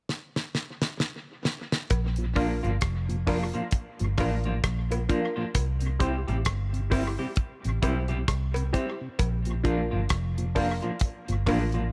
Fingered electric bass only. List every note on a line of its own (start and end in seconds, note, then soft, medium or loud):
1.91 2.60 A#1 medium
2.65 2.82 G1 medium
2.83 3.51 F1 medium
4.01 4.18 G1 medium
4.19 4.62 A1 medium
4.64 5.08 A#1 medium
5.56 6.25 C2 loud
6.29 6.46 A1 medium
6.47 7.16 G1 loud
7.65 7.82 A1 medium
7.83 8.26 B1 medium
8.29 8.72 C2 medium
9.20 9.89 A#1 loud
9.93 10.10 G1 medium
10.11 10.80 F1 medium
11.29 11.47 G1 medium
11.48 11.91 A1 medium